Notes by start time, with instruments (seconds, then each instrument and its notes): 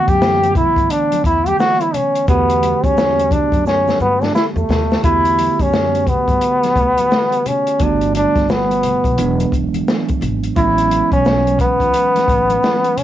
Already playing: tine electric piano D3 E3 A3 B3 F#5, trombone F#4
0.08 upright bass F#2, trombone G4, kick, closed hi-hat, shaker
0.22 snare, shaker
0.44 closed hi-hat, shaker
0.55 trombone E4, kick, closed hi-hat, high conga, low conga, shaker
0.76 upright bass G2, kick, closed hi-hat, shaker
0.90 trombone D4, closed hi-hat, shaker
1.12 closed hi-hat, high conga, shaker
1.24 upright bass E2, trombone E4, kick, closed hi-hat, shaker
1.46 trombone G4, closed hi-hat, high conga, shaker
1.59 trombone F#4, snare, shaker
1.81 trombone E4, closed hi-hat, shaker
1.94 trombone C#4, closed hi-hat, low conga, shaker
2.15 closed hi-hat, shaker
2.28 upright bass E2, tine electric piano D3 A3 B3 F#4 G4, trombone B3, kick, closed hi-hat, shaker
2.50 closed hi-hat, shaker
2.63 closed hi-hat, high conga, shaker
2.84 upright bass E2, trombone C#4, kick, closed hi-hat, shaker
2.97 snare, high conga, shaker
3.19 closed hi-hat, shaker
3.31 trombone D4, kick, closed hi-hat, high conga, low conga, shaker
3.52 upright bass F#2, kick, closed hi-hat, shaker
3.66 trombone C#4, snare, shaker
3.88 snare, high conga, shaker
4.00 upright bass G2, trombone B3, shaker
4.22 trombone D4, snare, high conga, shaker
4.35 trombone E4, snare, shaker
4.56 upright bass E2, trombone A3, shaker
4.69 upright bass D#2, snare, low conga, shaker
4.91 snare, shaker
5.03 upright bass E2, tine electric piano D3 A3 B3 F#4 G4, trombone E4, kick, closed hi-hat, shaker
5.25 closed hi-hat, shaker
5.38 closed hi-hat, high conga, shaker
5.59 upright bass F#2, trombone C#4, kick, closed hi-hat, shaker
5.73 snare, high conga, shaker
5.95 closed hi-hat, shaker
6.07 trombone B3, kick, closed hi-hat, low conga, shaker
6.28 upright bass G2, kick, closed hi-hat, shaker
6.41 closed hi-hat, shaker
6.63 snare, closed hi-hat, high conga, shaker
6.76 upright bass D2, kick, closed hi-hat, low conga, shaker
6.98 closed hi-hat, high conga, shaker
7.11 snare, shaker
7.32 closed hi-hat, shaker
7.46 trombone C#4, closed hi-hat, low conga, shaker
7.67 closed hi-hat, shaker
7.79 upright bass G1, tine electric piano D3 G3 A3 B3 F#4, trombone D4, kick, closed hi-hat, shaker
8.01 closed hi-hat, shaker
8.15 trombone D4, closed hi-hat, high conga, shaker
8.36 upright bass G1, kick, snare, closed hi-hat, shaker
8.49 trombone B3, snare, high conga, shaker
8.71 closed hi-hat, shaker
8.83 closed hi-hat, low conga, shaker
9.04 upright bass B1, kick, closed hi-hat, shaker
9.17 upright bass E1, tine electric piano E3 F#3 G#3 B3 D4, closed hi-hat, shaker
9.40 closed hi-hat, high conga, shaker
9.52 upright bass E1, kick, closed hi-hat, low conga, shaker
9.74 closed hi-hat, high conga, shaker
9.88 snare, shaker
10.09 kick, closed hi-hat, shaker
10.21 upright bass G#1, closed hi-hat, low conga, shaker
10.44 closed hi-hat, shaker
10.55 upright bass A1, tine electric piano E3 F#3 G#3 B3 C#4, trombone E4, kick, closed hi-hat, shaker
10.78 closed hi-hat, shaker
10.91 closed hi-hat, high conga, shaker
11.12 upright bass B1, trombone C#4, kick, closed hi-hat, shaker
11.25 snare, high conga, shaker
11.47 closed hi-hat, shaker
11.59 trombone B3, kick, closed hi-hat, low conga, shaker
11.80 upright bass C#2, kick, closed hi-hat, shaker
11.94 closed hi-hat, shaker
12.16 snare, closed hi-hat, high conga, shaker
12.28 upright bass A1, kick, closed hi-hat, low conga, shaker
12.50 closed hi-hat, high conga, shaker
12.63 snare, shaker
12.84 closed hi-hat, shaker
12.97 trombone C#4, closed hi-hat, low conga, shaker